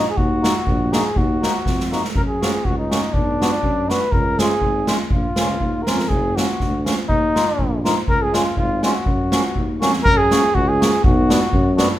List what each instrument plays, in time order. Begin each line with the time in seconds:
0.10 trumpet G#4
0.17 tuba D#2, trumpet F#4, kick
0.42 accordion A#3 D#4 F#4, snare
0.67 tuba A#1, kick
0.92 accordion A#3 D#4 F#4, trumpet G#4, snare
1.16 tuba D#2, trumpet F#4, kick
1.42 accordion A#3 D#4 F#4, snare
1.66 tuba F2, kick, snare
1.80 snare
1.91 accordion A#3 D#4 F#4, snare
2.05 snare
2.15 tuba F#2, trumpet A#4, kick
2.28 trumpet G#4
2.41 accordion A#3 C#4 F#4, snare
2.64 tuba C#2, trumpet F#4, kick
2.78 trumpet D#4
2.90 accordion A#3 C#4 F#4, snare
3.13 tuba B1, trumpet D4, kick
3.41 accordion B3 D4 F#4, snare
3.63 tuba F#2, kick
3.89 accordion B3 D4 F#4, trumpet B4, snare
4.12 tuba C#2, trumpet A#4, kick
4.39 accordion G#3 C#4 F4, trumpet G#4, snare
4.61 tuba G#1, kick
4.87 accordion G#3 C#4 F4, snare
5.10 tuba A#1, trumpet F4, kick
5.36 tuba C#2, accordion A#3 C#4 F4, snare
5.60 tuba D#2, kick
5.83 accordion A#3, trumpet A#4, snare
5.88 tuba F2, accordion C#4 F4
5.99 snare
6.09 tuba F#1, trumpet G#4, kick
6.36 accordion A#3 C#4 F#4, trumpet F#4, snare
6.60 tuba D2, kick, snare
6.85 accordion A#3 C#4 F#4, snare
7.08 tuba D#2, trumpet D#4, kick
7.34 accordion A#3 D#4 F4, snare
7.59 tuba A#1, kick
7.84 accordion A#3 D#4 F4, snare
8.08 tuba C#2, trumpet A#4, kick
8.22 trumpet G#4
8.32 accordion G#3 C#4 F4, snare
8.36 trumpet F4
8.57 tuba G#1, trumpet F4, kick
8.82 accordion G#3 C#4 F4, trumpet F#4, snare
9.06 tuba F#2, kick
9.31 accordion A#3 C#4 F#4, snare
9.55 tuba D#2, kick
9.80 tuba F2, accordion A#3 C#4 F#4, snare
9.93 snare
10.04 tuba F#2, trumpet A#4, kick
10.18 trumpet G#4
10.31 accordion A#3 C#4 F#4, snare, hi-hat pedal
10.55 tuba C#2, trumpet F#4, kick
10.68 trumpet G#4
10.79 accordion A#3 C#4 F#4, snare, hi-hat pedal
11.04 tuba B1, trumpet F#4, kick
11.28 accordion B3 D4 F#4, snare, hi-hat pedal
11.53 tuba F#2, kick
11.77 accordion B3 D4 F#4, snare, hi-hat pedal